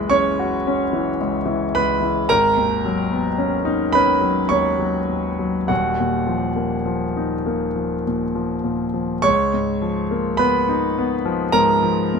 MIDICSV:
0, 0, Header, 1, 2, 480
1, 0, Start_track
1, 0, Tempo, 1092896
1, 1008, Time_signature, 3, 2, 24, 8
1, 1487, Tempo, 1136364
1, 1967, Tempo, 1183432
1, 3887, Tempo, 1162791
1, 5100, End_track
2, 0, Start_track
2, 0, Title_t, "Grand piano"
2, 0, Program_c, 0, 0
2, 0, Control_c, 0, 64, 127
2, 0, Note_on_c, 0, 30, 65
2, 0, Note_on_c, 0, 37, 49
2, 0, Note_on_c, 0, 52, 48
2, 0, Note_on_c, 0, 56, 55
2, 0, Note_on_c, 0, 71, 82
2, 0, Note_on_c, 0, 83, 107
2, 42, Note_on_c, 0, 85, 104
2, 44, Note_on_c, 0, 61, 63
2, 47, Note_on_c, 0, 73, 88
2, 48, Note_off_c, 0, 83, 0
2, 121, Note_off_c, 0, 56, 0
2, 173, Note_on_c, 0, 66, 57
2, 238, Note_off_c, 0, 61, 0
2, 295, Note_on_c, 0, 61, 61
2, 362, Note_off_c, 0, 66, 0
2, 409, Note_off_c, 0, 52, 0
2, 409, Note_on_c, 0, 52, 55
2, 483, Note_off_c, 0, 61, 0
2, 510, Note_off_c, 0, 73, 0
2, 525, Note_off_c, 0, 85, 0
2, 529, Note_off_c, 0, 37, 0
2, 529, Note_on_c, 0, 37, 49
2, 600, Note_off_c, 0, 52, 0
2, 640, Note_on_c, 0, 52, 56
2, 721, Note_off_c, 0, 37, 0
2, 768, Note_on_c, 0, 83, 103
2, 770, Note_off_c, 0, 71, 0
2, 770, Note_on_c, 0, 71, 83
2, 771, Note_on_c, 0, 37, 56
2, 837, Note_off_c, 0, 52, 0
2, 880, Note_on_c, 0, 52, 56
2, 962, Note_off_c, 0, 37, 0
2, 993, Note_off_c, 0, 71, 0
2, 994, Note_off_c, 0, 30, 0
2, 1004, Note_off_c, 0, 52, 0
2, 1006, Note_on_c, 0, 82, 115
2, 1008, Note_off_c, 0, 83, 0
2, 1008, Note_on_c, 0, 32, 68
2, 1008, Note_on_c, 0, 70, 99
2, 1015, Control_c, 0, 64, 0
2, 1101, Control_c, 0, 64, 127
2, 1130, Note_on_c, 0, 39, 48
2, 1253, Note_on_c, 0, 54, 53
2, 1319, Note_off_c, 0, 39, 0
2, 1371, Note_on_c, 0, 59, 47
2, 1441, Note_off_c, 0, 54, 0
2, 1487, Note_on_c, 0, 61, 57
2, 1559, Note_off_c, 0, 59, 0
2, 1599, Note_on_c, 0, 63, 62
2, 1675, Note_off_c, 0, 61, 0
2, 1705, Note_off_c, 0, 70, 0
2, 1715, Note_on_c, 0, 83, 108
2, 1721, Note_off_c, 0, 82, 0
2, 1724, Note_on_c, 0, 61, 57
2, 1726, Note_on_c, 0, 71, 78
2, 1793, Note_off_c, 0, 63, 0
2, 1836, Note_on_c, 0, 54, 46
2, 1918, Note_off_c, 0, 61, 0
2, 1951, Note_off_c, 0, 71, 0
2, 1953, Note_on_c, 0, 85, 100
2, 1959, Note_on_c, 0, 39, 45
2, 1962, Note_off_c, 0, 83, 0
2, 1962, Note_on_c, 0, 73, 70
2, 2034, Note_off_c, 0, 54, 0
2, 2077, Note_on_c, 0, 54, 46
2, 2153, Note_off_c, 0, 39, 0
2, 2195, Note_on_c, 0, 39, 40
2, 2271, Note_off_c, 0, 54, 0
2, 2320, Note_on_c, 0, 54, 44
2, 2390, Note_off_c, 0, 39, 0
2, 2424, Note_off_c, 0, 73, 0
2, 2426, Note_off_c, 0, 32, 0
2, 2436, Note_off_c, 0, 85, 0
2, 2437, Note_on_c, 0, 27, 52
2, 2437, Note_on_c, 0, 78, 74
2, 2441, Note_off_c, 0, 54, 0
2, 2441, Note_on_c, 0, 66, 60
2, 2442, Note_on_c, 0, 39, 60
2, 2451, Control_c, 0, 64, 0
2, 2534, Control_c, 0, 64, 127
2, 2566, Note_on_c, 0, 46, 37
2, 2676, Note_on_c, 0, 53, 47
2, 2757, Note_off_c, 0, 46, 0
2, 2793, Note_on_c, 0, 58, 41
2, 2872, Note_off_c, 0, 53, 0
2, 2913, Note_on_c, 0, 53, 45
2, 2991, Note_off_c, 0, 58, 0
2, 3040, Note_on_c, 0, 63, 45
2, 3111, Note_off_c, 0, 53, 0
2, 3159, Note_on_c, 0, 58, 47
2, 3235, Note_off_c, 0, 63, 0
2, 3278, Note_on_c, 0, 53, 38
2, 3355, Note_off_c, 0, 58, 0
2, 3389, Note_off_c, 0, 66, 0
2, 3403, Note_off_c, 0, 78, 0
2, 3407, Note_on_c, 0, 46, 36
2, 3475, Note_off_c, 0, 53, 0
2, 3521, Note_on_c, 0, 53, 44
2, 3600, Note_off_c, 0, 46, 0
2, 3637, Note_on_c, 0, 46, 35
2, 3717, Note_off_c, 0, 53, 0
2, 3757, Note_on_c, 0, 53, 43
2, 3835, Note_off_c, 0, 46, 0
2, 3869, Note_off_c, 0, 27, 0
2, 3871, Note_off_c, 0, 39, 0
2, 3873, Note_on_c, 0, 85, 113
2, 3878, Note_on_c, 0, 73, 78
2, 3880, Note_on_c, 0, 37, 65
2, 3882, Note_off_c, 0, 53, 0
2, 3897, Control_c, 0, 64, 0
2, 3986, Control_c, 0, 64, 127
2, 4003, Note_on_c, 0, 44, 41
2, 4119, Note_on_c, 0, 53, 48
2, 4197, Note_off_c, 0, 44, 0
2, 4240, Note_on_c, 0, 58, 48
2, 4314, Note_off_c, 0, 53, 0
2, 4345, Note_off_c, 0, 73, 0
2, 4348, Note_on_c, 0, 83, 103
2, 4354, Note_on_c, 0, 59, 62
2, 4356, Note_on_c, 0, 71, 79
2, 4359, Note_off_c, 0, 85, 0
2, 4433, Note_off_c, 0, 58, 0
2, 4478, Note_on_c, 0, 63, 59
2, 4549, Note_off_c, 0, 59, 0
2, 4601, Note_on_c, 0, 59, 60
2, 4670, Note_off_c, 0, 63, 0
2, 4712, Note_on_c, 0, 53, 60
2, 4793, Note_off_c, 0, 59, 0
2, 4821, Note_off_c, 0, 71, 0
2, 4823, Note_on_c, 0, 82, 118
2, 4826, Note_on_c, 0, 70, 82
2, 4828, Note_on_c, 0, 44, 58
2, 4833, Note_off_c, 0, 83, 0
2, 4911, Note_off_c, 0, 53, 0
2, 4948, Note_on_c, 0, 53, 58
2, 5031, Note_off_c, 0, 44, 0
2, 5079, Note_on_c, 0, 44, 48
2, 5100, Note_off_c, 0, 37, 0
2, 5100, Note_off_c, 0, 44, 0
2, 5100, Note_off_c, 0, 53, 0
2, 5100, Note_off_c, 0, 70, 0
2, 5100, Note_off_c, 0, 82, 0
2, 5100, End_track
0, 0, End_of_file